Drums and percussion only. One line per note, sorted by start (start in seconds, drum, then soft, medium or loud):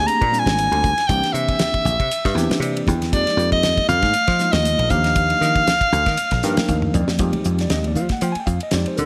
0.08 hi-hat pedal medium
0.08 ride medium
0.22 kick medium
0.22 ride medium
0.33 hi-hat pedal medium
0.47 snare loud
0.47 ride medium
0.47 high conga medium
0.58 hi-hat pedal medium
0.58 ride medium
0.72 ride medium
0.84 kick medium
0.84 hi-hat pedal medium
0.84 low conga medium
0.98 snare soft
0.98 ride medium
1.09 kick loud
1.09 hi-hat pedal medium
1.09 ride medium
1.23 snare soft
1.23 ride medium
1.34 hi-hat pedal medium
1.48 kick medium
1.48 ride medium
1.59 snare loud
1.59 hi-hat pedal medium
1.59 ride medium
1.59 low conga medium
1.74 kick medium
1.74 ride medium
1.85 hi-hat pedal medium
1.85 low conga medium
2.00 kick medium
2.00 ride medium
2.11 hi-hat pedal medium
2.11 ride medium
2.25 kick medium
2.25 snare soft
2.25 ride medium
2.37 snare soft
2.37 hi-hat pedal medium
2.50 snare loud
2.50 ride medium
2.50 high conga medium
2.62 hi-hat pedal medium
2.62 ride medium
2.77 ride medium
2.87 kick medium
2.87 hi-hat pedal loud
2.87 low conga medium
3.02 snare soft
3.02 ride medium
3.13 kick loud
3.13 hi-hat pedal medium
3.13 ride medium
3.27 snare soft
3.27 ride medium
3.39 hi-hat pedal medium
3.52 kick medium
3.52 ride medium
3.63 snare loud
3.63 hi-hat pedal medium
3.63 ride medium
3.63 low conga medium
3.77 kick medium
3.77 ride medium
3.88 hi-hat pedal medium
3.88 low conga medium
4.02 kick medium
4.02 snare soft
4.02 ride medium
4.02 high conga medium
4.13 hi-hat pedal medium
4.13 ride medium
4.27 kick medium
4.27 snare soft
4.27 ride medium
4.39 snare soft
4.39 hi-hat pedal medium
4.53 snare loud
4.53 ride medium
4.53 high conga medium
4.65 hi-hat pedal medium
4.65 ride medium
4.79 ride medium
4.90 kick medium
4.90 hi-hat pedal medium
4.90 low conga medium
5.04 snare soft
5.04 ride medium
5.16 kick loud
5.16 hi-hat pedal medium
5.16 ride medium
5.30 ride medium
5.42 snare soft
5.42 hi-hat pedal medium
5.55 kick medium
5.55 ride medium
5.67 snare loud
5.67 hi-hat pedal medium
5.67 ride medium
5.67 low conga medium
5.81 kick medium
5.81 ride medium
5.92 hi-hat pedal medium
5.92 low conga medium
6.06 kick medium
6.06 snare soft
6.06 ride medium
6.06 high conga medium
6.17 hi-hat pedal medium
6.17 ride medium
6.31 kick medium
6.31 snare soft
6.31 ride medium
6.43 snare soft
6.43 hi-hat pedal medium
6.57 snare loud
6.57 ride medium
6.57 high conga medium
6.68 kick medium
6.68 hi-hat pedal medium
6.82 mid tom medium
6.82 high conga medium
6.94 hi-hat pedal medium
6.94 mid tom medium
6.94 low conga medium
7.08 snare medium
7.08 high conga medium
7.19 kick loud
7.19 hi-hat pedal medium
7.19 ride medium
7.33 ride medium
7.33 high conga medium
7.33 low conga medium
7.44 hi-hat pedal medium
7.59 snare soft
7.59 ride medium
7.70 snare loud
7.70 hi-hat pedal medium
7.70 ride medium
7.83 ride medium
7.83 high conga medium
7.95 hi-hat pedal medium
7.95 low conga medium
8.09 kick medium
8.09 snare soft
8.09 ride medium
8.09 high conga medium
8.21 hi-hat pedal medium
8.21 ride medium
8.35 ride medium
8.47 kick medium
8.47 hi-hat pedal medium
8.60 ride medium
8.71 snare loud
8.71 hi-hat pedal medium
8.71 ride medium
8.86 ride medium
8.97 hi-hat pedal medium
8.97 low conga medium